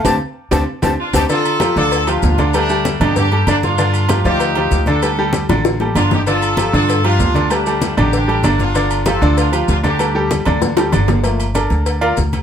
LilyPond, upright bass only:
\new Staff \with { instrumentName = "Upright bass" } { \clef bass \time 4/4 \key d \phrygian \tempo 4 = 193 d,8 r4 d,8 r8 d,8 r8 d,8 | r4. d,4. d,4~ | d,4. g,4. g,4~ | g,4. d,4. d,4~ |
d,4. a,,4. g,,4~ | g,,4. g,4. d,4~ | d,4. a,,4. g,,4~ | g,,4. d,4. d,4~ |
d,4. d,4. g,,4~ | g,,4. d,4. d,4 | }